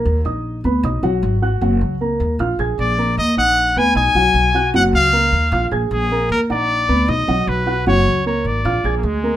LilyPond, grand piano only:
\new Staff \with { instrumentName = "Grand piano" } { \time 4/4 \key ees \minor \tempo 4 = 154 <bes bes' bes''>8 <ees' ees'' ees'''>4 <ces' ces'' ces'''>8 <dis' dis'' dis'''>8 <fis fis' fis''>4 <fis' fis'' fis'''>8 | <ges ges' ges''>4 <bes bes' bes''>4 <f' f'' f'''>8 <aes' aes'' aes'''>4 <bes bes' bes''>8~ | <bes bes' bes''>8 <ees' ees'' ees'''>4 <ces' ces'' ces'''>8 <dis' dis'' dis'''>8 <fis fis' fis''>4 <fis' fis'' fis'''>8 | <ges ges' ges''>4 <bes bes' bes''>4 <f' f'' f'''>8 <aes' aes'' aes'''>4 <bes bes' bes''>8~ |
<bes bes' bes''>8 <ees' ges'' bes''>4 <ces' ces'' ces'''>8 <dis' dis'' dis'''>8 <fis fis' fis''>4 <fis' fis'' fis'''>8 | <ges ges' ges''>4 <bes bes' bes''>4 <f' f'' f'''>8 <aes' aes'' aes'''>4 <bes bes' bes''>8 | }